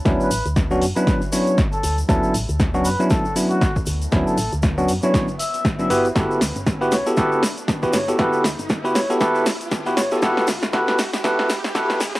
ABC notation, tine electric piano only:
X:1
M:4/4
L:1/16
Q:"Swing 16ths" 1/4=118
K:D
V:1 name="Tine electric piano"
[F,B,CDE]2 z3 [F,B,CDF] z [F,B,CDE]2 z [F,B,CDE]2 z4 | [F,B,CDE]2 z3 [F,B,CDF] z [F,B,CDE]2 z [F,B,CDE]2 z4 | [F,B,CDE]2 z3 [F,B,CDF] z [F,B,CDE]2 z4 [F,B,CDE] [B,EFGB] z | [B,EFGA]2 z3 [B,EFGB] z [B,EFGA] [B,EFGA]2 z3 [B,EFGB] z [B,EFGA] |
[B,EFGA]2 z3 [B,EFGB] z [B,EFGA] [B,EFGA]2 z3 [B,EFGB] z [B,EFGA] | [B,EFGA]2 z2 [B,EFGA]2 z2 [B,EFGA]2 z2 [B,EFGA]2 z2 |]